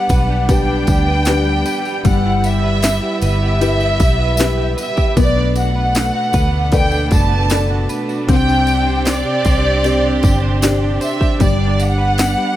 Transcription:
Already playing: clean electric guitar G3 B3 D4 G4 B4, felt piano G3, string section G3 B3 D4, violin section F#5
0.09 fingered electric bass B1, clean electric guitar B4, kick, ride, tambourine
0.30 clean electric guitar G4
0.49 clean electric guitar G3, felt piano D4 G4 B4, violin section G5, kick, ride, tambourine
0.69 clean electric guitar D4
0.87 fingered electric bass D2, clean electric guitar G4, kick, ride, tambourine
0.91 violin section G5
1.08 clean electric guitar B4
1.25 clean electric guitar B3, felt piano D4 G4 B4, snare, ride, tambourine
1.47 clean electric guitar G4
1.66 clean electric guitar B4, ride, tambourine
1.85 clean electric guitar G4, tambourine
2.05 fingered electric bass G1, felt piano G3, clean electric guitar G3, string section B3 E4, violin section F#5, kick, ride, tambourine
2.25 clean electric guitar E4
2.44 clean electric guitar G4, violin section E5, ride, tambourine
2.64 clean electric guitar B4
2.83 clean electric guitar E4, snare, ride, tambourine
3.03 clean electric guitar G4
3.21 fingered electric bass G1, clean electric guitar B4, violin section E5, ride, tambourine
3.42 clean electric guitar G4
3.61 clean electric guitar G3, felt piano E4 G4 B4, ride, tambourine
3.80 clean electric guitar E4, tambourine
4.00 fingered electric bass B1, clean electric guitar G4, kick, ride, tambourine
4.19 clean electric guitar B4
4.37 felt piano E4 G4 B4, clean electric guitar E4, snare, ride, tambourine
4.58 clean electric guitar G4
4.77 clean electric guitar B4, ride, tambourine
4.81 violin section E5
4.96 clean electric guitar G4, kick, tambourine
5.15 fingered electric bass B1, clean electric guitar B2, string section A3 B3 D4, felt piano B3, kick, ride, tambourine
5.21 violin section D5
5.36 clean electric guitar D4
5.56 clean electric guitar F#4, violin section F#5, ride, tambourine
5.76 clean electric guitar B4
5.95 clean electric guitar A3, snare, ride, tambourine
6.15 clean electric guitar F#4
6.33 fingered electric bass D2, clean electric guitar B4, kick, ride, tambourine
6.72 clean electric guitar B2, felt piano A4 B4 D5, violin section G5, kick, ride, tambourine
6.92 clean electric guitar D4, tambourine
7.11 fingered electric bass F#1, clean electric guitar F#4, violin section A5, kick, ride, tambourine
7.31 clean electric guitar B4
7.50 clean electric guitar A3, felt piano A4 B4 D5, snare, ride, tambourine
7.70 clean electric guitar F#4
7.89 clean electric guitar B4, ride, tambourine
8.09 clean electric guitar F#4, tambourine
8.29 fingered electric bass C2, string section C3 C4 G4, clean electric guitar C4, felt piano C4, violin section G5, kick, ride, tambourine
8.48 clean electric guitar D4, tambourine
8.67 clean electric guitar G4, ride, tambourine
8.87 clean electric guitar C5
9.05 clean electric guitar D4, violin section D5, snare, ride, tambourine
9.25 clean electric guitar G4
9.45 fingered electric bass C2, clean electric guitar C5, kick, ride, tambourine
9.65 clean electric guitar G4
9.84 clean electric guitar C4, felt piano G4 C5 D5, ride, tambourine
10.04 clean electric guitar D4
10.23 fingered electric bass G1, clean electric guitar G4, kick, ride, tambourine
10.42 clean electric guitar C5
10.62 clean electric guitar D4, felt piano G4 C5 D5, snare, ride, tambourine
10.81 clean electric guitar G4
11.01 clean electric guitar C5, violin section E5, ride, tambourine
11.20 clean electric guitar G4, kick, tambourine
11.39 fingered electric bass G1, clean electric guitar G3, string section G3 B3, felt piano G3, kick, ride, tambourine
11.43 violin section D5
11.58 clean electric guitar D4
11.78 clean electric guitar G4, violin section F#5, ride, tambourine
11.98 clean electric guitar B4
12.18 clean electric guitar B3, snare, ride, tambourine
12.37 clean electric guitar G4

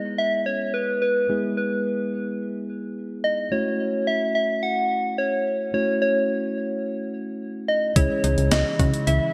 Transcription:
Already playing: tine electric piano G#3 B3 E4 G#4, soft synth lead D#5
0.18 soft synth lead E5
0.46 soft synth lead C#5
0.74 soft synth lead B4
1.02 soft synth lead B4
1.29 tine electric piano G#3 B3 E4 G#4
1.57 soft synth lead B4
3.24 soft synth lead D#5
3.52 tine electric piano A3 C#4 E4 F#4, soft synth lead C#5
4.07 soft synth lead E5
4.35 soft synth lead E5
4.63 soft synth lead F#5
5.18 soft synth lead C#5
5.74 tine electric piano A3 C#4 E4 F#4, soft synth lead C#5
6.02 soft synth lead C#5
7.68 soft synth lead D#5
7.96 fm bass C#2, analog synth pad C#3 E3 G#3 E4, tine electric piano G#3 C#4 E4 G#4, synth arpeggio sound E4, soft synth lead C#5, kick, closed hi-hat
8.24 fm bass C#2, synth arpeggio sound D#4, closed hi-hat
8.38 fm bass C#2, closed hi-hat
8.51 fm bass C#2, synth arpeggio sound E4, soft synth lead D#5, snare, closed hi-hat
8.79 fm bass C#3, synth arpeggio sound F#4, kick, closed hi-hat
8.94 closed hi-hat
9.07 fm bass C#2, synth arpeggio sound E4, soft synth lead E5, closed hi-hat

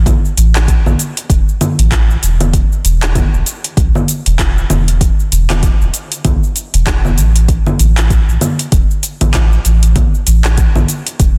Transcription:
Already playing: sub bass A1
0.06 kick, closed hi-hat, low conga, cabasa
0.25 cabasa
0.37 sub bass A1, closed hi-hat, cabasa
0.55 clap, closed hi-hat, cabasa
0.68 kick, closed hi-hat, cabasa
0.86 sub bass A1, low conga, cabasa
0.99 closed hi-hat, cabasa
1.17 closed hi-hat, cabasa
1.30 sub bass E1, kick, closed hi-hat, cabasa
1.49 cabasa
1.61 closed hi-hat, low conga, cabasa
1.79 sub bass A1, closed hi-hat, cabasa
1.91 kick, clap, closed hi-hat, cabasa
2.10 cabasa
2.23 sub bass E1, closed hi-hat, cabasa
2.41 closed hi-hat, low conga, cabasa
2.53 kick, closed hi-hat, cabasa
2.72 cabasa
2.84 sub bass E1, closed hi-hat, cabasa
3.02 clap, closed hi-hat, cabasa
3.15 kick, closed hi-hat, low conga, cabasa
3.33 sub bass E1, cabasa
3.46 closed hi-hat, cabasa
3.64 closed hi-hat, cabasa
3.77 sub bass B1, kick, closed hi-hat, cabasa
3.95 low conga, cabasa
4.08 closed hi-hat, cabasa
4.26 sub bass E1, closed hi-hat, cabasa
4.39 kick, clap, closed hi-hat, cabasa
4.58 cabasa
4.70 sub bass E1, closed hi-hat, low conga, cabasa
4.88 closed hi-hat, cabasa
5.01 kick, closed hi-hat, cabasa
5.20 cabasa
5.32 sub bass E1, closed hi-hat, cabasa
5.50 clap, closed hi-hat, low conga, cabasa
5.63 kick, closed hi-hat, cabasa
5.81 sub bass E1, cabasa
5.94 closed hi-hat, cabasa
6.12 closed hi-hat, cabasa
6.25 sub bass B1, kick, closed hi-hat, low conga, cabasa
6.43 cabasa
6.56 closed hi-hat, cabasa
6.74 sub bass E1, closed hi-hat, cabasa
6.87 kick, clap, closed hi-hat, cabasa
7.05 low conga, cabasa
7.17 sub bass A1, closed hi-hat, cabasa
7.36 closed hi-hat, cabasa
7.48 kick, closed hi-hat, cabasa
7.66 low conga, cabasa
7.79 sub bass A1, closed hi-hat, cabasa
7.97 clap, closed hi-hat, cabasa
8.10 kick, closed hi-hat, cabasa
8.28 sub bass A1, cabasa
8.41 closed hi-hat, low conga, cabasa
8.59 closed hi-hat, cabasa
8.72 sub bass E1, kick, closed hi-hat, cabasa
8.91 cabasa
9.03 closed hi-hat, cabasa
9.21 sub bass A1, closed hi-hat, low conga, cabasa
9.34 kick, clap, closed hi-hat, cabasa
9.53 cabasa
9.65 sub bass A1, closed hi-hat, cabasa
9.83 closed hi-hat, cabasa
9.96 kick, closed hi-hat, low conga, cabasa
10.14 cabasa
10.27 sub bass A1, closed hi-hat, cabasa
10.44 clap, closed hi-hat, cabasa
10.57 kick, closed hi-hat, cabasa
10.76 sub bass A1, low conga, cabasa
10.88 closed hi-hat, cabasa
11.07 closed hi-hat, cabasa
11.19 sub bass E1, kick, closed hi-hat, cabasa

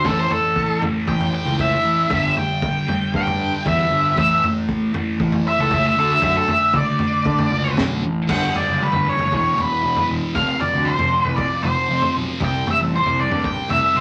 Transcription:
0.04 fingered electric bass A1, distorted electric guitar A2 E3 A3, lead electric guitar A4, kick, floor tom
0.19 lead electric guitar C5
0.31 lead electric guitar A4, floor tom
0.56 kick
0.81 distorted electric guitar A2 E3 A3, floor tom
1.08 fingered electric bass A1, lead electric guitar G5, kick
1.21 floor tom
1.35 lead electric guitar G5
1.45 fingered electric bass C#2
1.59 lead electric guitar E5, kick, floor tom
1.84 fingered electric bass A1
2.09 fingered electric bass G1, distorted electric guitar G2 D3 G3, kick, floor tom
2.37 lead electric guitar G5, floor tom
2.62 kick
2.87 distorted electric guitar G2 D3 G3, floor tom
3.14 fingered electric bass G2, lead electric guitar G5, kick
3.27 floor tom
3.66 fingered electric bass E2, lead electric guitar E5, kick, floor tom
3.90 fingered electric bass G1
4.16 fingered electric bass A1, distorted electric guitar A2 E3 A3, lead electric guitar E5, kick, floor tom
4.44 floor tom
4.69 kick
4.93 distorted electric guitar A2 E3 A3, floor tom
5.20 fingered electric bass A1, kick
5.32 floor tom
5.48 lead electric guitar E5
5.59 fingered electric bass C#2, lead electric guitar A4
5.71 lead electric guitar E5, kick, floor tom
5.87 lead electric guitar E5
5.96 fingered electric bass D2, distorted electric guitar D3 A3 D4, lead electric guitar A4
6.12 lead electric guitar E5
6.22 fingered electric bass F#2, lead electric guitar E5, kick, floor tom
6.37 lead electric guitar A4
6.48 lead electric guitar E5, floor tom
6.73 distorted electric guitar D3 A3 D4, lead electric guitar D5, kick, mid tom
6.99 floor tom
7.25 fingered electric bass D3, kick
7.39 floor tom
7.51 fingered electric bass C#2
7.77 fingered electric bass B1, kick, snare, floor tom
8.04 fingered electric bass A1
8.28 fingered electric bass G1, distorted electric guitar G2 D3 G3, lead electric guitar F#5, kick, floor tom, crash
8.54 distorted electric guitar D3 G3, lead electric guitar D5, floor tom
8.68 fingered electric bass F#1
8.79 distorted electric guitar G2 D3 G3, lead electric guitar B4
8.93 fingered electric bass G1, floor tom
9.05 distorted electric guitar D3 G3
9.09 lead electric guitar C#5
9.19 fingered electric bass F#1, floor tom
9.31 fingered electric bass E1, distorted electric guitar E2 B2 E3, kick
9.35 lead electric guitar C#5
9.57 fingered electric bass E1, distorted electric guitar B2 E3, lead electric guitar B4, floor tom
9.83 fingered electric bass E1, distorted electric guitar E2 B2 E3
9.96 floor tom
10.09 fingered electric bass E1
10.34 fingered electric bass F1, distorted electric guitar F2 C3 F3, lead electric guitar F5, kick, floor tom
10.60 distorted electric guitar C3 F3, lead electric guitar D5, floor tom
10.74 fingered electric bass D2
10.85 distorted electric guitar F2 C3 F3, lead electric guitar C5
10.99 fingered electric bass F1, floor tom
11.12 distorted electric guitar C3 F3
11.25 fingered electric bass C2, lead electric guitar B4, floor tom
11.36 lead electric guitar D5, kick
11.62 fingered electric bass F1, distorted electric guitar F3, lead electric guitar C5, floor tom
11.66 distorted electric guitar C3
11.89 fingered electric bass F1, distorted electric guitar F2 C3 F3
12.02 floor tom
12.15 fingered electric bass B1
12.40 fingered electric bass C2, distorted electric guitar C3 G3 C4, kick, floor tom
12.44 lead electric guitar G5
12.67 distorted electric guitar G3 C4, lead electric guitar E5, floor tom
12.79 fingered electric bass A1
12.92 distorted electric guitar C3 G3 C4, lead electric guitar C5
13.05 fingered electric bass C2, floor tom
13.18 distorted electric guitar G3 C4, lead electric guitar D5
13.31 fingered electric bass G2, floor tom
13.44 lead electric guitar G5, kick
13.69 fingered electric bass C2, distorted electric guitar G3 C4, lead electric guitar E5, floor tom
13.95 fingered electric bass C2, distorted electric guitar C3 G3, lead electric guitar C5

